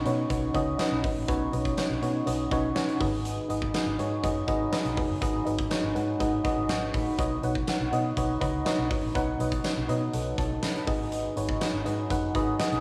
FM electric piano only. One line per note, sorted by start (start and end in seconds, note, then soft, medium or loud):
0.00 1.28 B2 medium
0.00 0.05 C#4 medium
0.00 0.06 D#4 medium
0.00 0.06 F#4 medium
0.00 0.06 B4 medium
0.00 0.07 C#5 medium
0.00 0.55 D#5 medium
0.05 0.22 C#4 medium
0.05 0.22 D#4 medium
0.05 0.23 F#4 medium
0.05 0.23 B4 medium
0.05 0.23 C#5 medium
0.29 0.47 C#4 medium
0.29 0.47 D#4 medium
0.29 0.47 F#4 medium
0.29 0.47 B4 medium
0.29 0.47 C#5 loud
0.54 0.71 C#4 loud
0.54 0.71 D#4 loud
0.54 0.71 F#4 loud
0.54 0.72 B4 loud
0.54 0.72 D#5 loud
0.78 0.96 C#4 loud
0.78 0.96 D#4 loud
0.78 0.96 F#4 loud
0.78 0.96 B4 loud
0.78 0.96 D#5 loud
1.03 1.20 C#4 medium
1.03 1.21 D#4 medium
1.03 1.21 F#4 medium
1.03 1.21 B4 medium
1.03 1.21 D#5 medium
1.28 1.98 B2 medium
1.28 1.45 C#4 loud
1.28 1.45 D#4 loud
1.28 1.45 F#4 loud
1.28 1.45 B4 loud
1.28 1.45 C#5 loud
1.52 1.69 C#4 medium
1.52 1.70 D#4 medium
1.52 1.70 F#4 medium
1.52 1.70 B4 medium
1.52 1.70 D#5 medium
1.77 1.94 C#4 medium
1.77 1.94 D#4 medium
1.77 1.94 F#4 medium
1.77 1.95 B4 medium
1.77 1.95 C#5 loud
2.02 2.19 C#4 medium
2.02 2.19 D#4 medium
2.02 2.19 F#4 medium
2.02 2.19 B4 medium
2.02 2.19 C#5 medium
2.26 2.43 C#4 loud
2.26 2.43 D#4 medium
2.26 2.44 F#4 medium
2.26 2.44 B4 medium
2.26 2.44 D#5 loud
2.51 2.68 C#4 loud
2.51 2.68 D#4 loud
2.51 2.68 F#4 loud
2.51 2.68 B4 loud
2.51 2.69 C#5 loud
2.75 2.93 C#4 loud
2.75 2.93 D#4 loud
2.75 2.93 F#4 loud
2.75 2.93 B4 loud
2.75 2.93 C#5 loud
3.00 3.70 G#2 medium
3.00 3.39 D#4 medium
3.00 3.40 F#4 medium
3.00 3.40 G#4 medium
3.00 3.40 B4 medium
3.00 3.40 D#5 loud
3.49 3.66 D#4 medium
3.49 3.66 F#4 medium
3.49 3.66 G#4 medium
3.49 3.67 B4 medium
3.49 3.67 D#5 loud
3.74 3.91 D#4 medium
3.74 3.91 F#4 medium
3.74 3.91 G#4 medium
3.74 3.91 B4 medium
3.74 3.92 D#5 loud
3.99 4.16 D#4 medium
3.99 4.16 F#4 medium
3.99 4.16 G#4 medium
3.99 4.16 B4 medium
3.99 4.16 C#5 loud
4.23 4.40 D#4 medium
4.23 4.40 F#4 medium
4.23 4.40 G#4 medium
4.23 4.41 B4 medium
4.23 4.41 D#5 loud
4.47 4.65 D#4 loud
4.47 4.65 F#4 loud
4.47 4.65 G#4 loud
4.47 4.65 B4 loud
4.47 4.65 D#5 loud
4.72 4.89 D#4 loud
4.72 4.89 F#4 loud
4.72 4.90 G#4 loud
4.72 4.90 B4 loud
4.72 4.90 D#5 loud
4.97 5.67 G#2 medium
4.97 5.14 D#4 medium
4.97 5.14 F#4 medium
4.97 5.14 G#4 medium
4.97 5.14 B4 medium
4.97 5.15 D#5 loud
5.21 5.38 D#4 loud
5.21 5.39 F#4 loud
5.21 5.39 G#4 loud
5.21 5.39 B4 loud
5.21 5.39 D#5 loud
5.45 5.63 D#4 medium
5.45 5.63 F#4 medium
5.45 5.63 G#4 medium
5.45 5.63 B4 medium
5.45 5.63 D#5 medium
5.70 5.87 D#4 medium
5.70 5.88 F#4 medium
5.70 5.88 G#4 medium
5.70 5.88 B4 medium
5.70 5.88 C#5 loud
5.94 6.12 D#4 medium
5.94 6.12 F#4 medium
5.94 6.12 G#4 medium
5.94 6.12 B4 medium
5.94 6.12 F#5 loud
6.19 6.37 D#4 medium
6.19 6.37 F#4 medium
6.19 6.37 G#4 medium
6.19 6.37 B4 medium
6.19 6.37 D#5 loud
6.44 6.61 D#4 loud
6.44 6.61 F#4 loud
6.44 6.62 G#4 medium
6.44 6.62 B4 medium
6.44 6.62 D#5 loud
6.69 6.93 C#6 medium
6.94 7.18 D#5 medium
6.94 7.41 B5 medium
7.18 7.88 B2 medium
7.18 7.35 D#4 loud
7.18 7.35 F#4 loud
7.18 7.36 B4 loud
7.18 7.36 C#5 medium
7.18 7.36 D#5 loud
7.43 7.60 D#4 medium
7.43 7.60 F#4 medium
7.43 7.60 B4 medium
7.43 7.60 C#5 medium
7.43 7.61 F#5 medium
7.67 7.85 D#4 medium
7.67 7.85 F#4 medium
7.67 7.85 B4 medium
7.67 7.85 C#5 medium
7.67 7.85 F#5 loud
7.92 8.09 D#4 medium
7.92 8.09 F#4 medium
7.92 8.09 B4 medium
7.92 8.10 C#5 medium
7.92 8.10 D#5 medium
8.17 8.34 D#4 medium
8.17 8.34 F#4 medium
8.17 8.34 B4 medium
8.17 8.34 C#5 medium
8.17 8.34 D#5 loud
8.41 8.58 D#4 loud
8.41 8.58 F#4 medium
8.41 8.58 B4 loud
8.41 8.58 C#5 loud
8.41 8.59 D#5 loud
8.65 8.83 D#4 loud
8.65 8.83 F#4 medium
8.65 8.83 B4 loud
8.65 8.83 C#5 loud
8.65 8.83 D#5 loud
8.90 9.07 D#4 medium
8.90 9.08 F#4 medium
8.90 9.08 B4 medium
8.90 9.08 C#5 medium
8.90 9.08 D#5 medium
9.15 9.85 B2 medium
9.15 9.32 D#4 loud
9.15 9.32 F#4 loud
9.15 9.32 B4 loud
9.15 9.32 C#5 loud
9.15 9.33 F#5 loud
9.39 9.57 D#4 medium
9.39 9.57 F#4 medium
9.39 9.57 B4 medium
9.39 9.57 C#5 medium
9.39 9.57 D#5 medium
9.64 9.81 D#4 medium
9.64 9.81 F#4 medium
9.64 9.82 B4 medium
9.64 9.82 C#5 medium
9.64 9.82 F#5 medium
9.88 10.06 D#4 medium
9.88 10.06 F#4 medium
9.88 10.06 B4 medium
9.88 10.06 C#5 medium
9.88 10.06 D#5 loud
10.13 10.37 A4 medium
10.13 10.37 F#5 medium
10.38 10.62 C#5 medium
10.38 10.62 A5 medium
10.63 10.86 D#5 medium
10.63 11.09 B5 medium
10.87 11.57 G#2 medium
10.87 11.26 D#4 loud
10.87 11.26 F#4 medium
10.87 11.27 G#4 medium
10.87 11.27 B4 medium
10.87 11.27 D#5 loud
11.36 11.53 D#4 medium
11.36 11.53 F#4 medium
11.36 11.54 G#4 medium
11.36 11.54 B4 medium
11.36 11.54 C#5 loud
11.61 11.78 D#4 medium
11.61 11.78 F#4 medium
11.61 11.78 G#4 medium
11.61 11.78 B4 medium
11.61 11.78 D#5 loud
11.85 12.02 D#4 medium
11.85 12.02 F#4 medium
11.85 12.02 G#4 medium
11.85 12.03 B4 medium
11.85 12.03 D#5 loud
12.10 12.27 D#4 loud
12.10 12.27 F#4 medium
12.10 12.27 G#4 medium
12.10 12.28 B4 medium
12.10 12.28 F#5 loud
12.34 12.52 D#4 loud
12.34 12.52 F#4 loud
12.34 12.52 G#4 loud
12.34 12.52 B4 loud
12.34 12.52 D#5 loud
12.59 12.76 D#4 loud
12.59 12.76 F#4 loud
12.59 12.76 G#4 loud
12.59 12.77 B4 loud
12.59 12.77 D#5 loud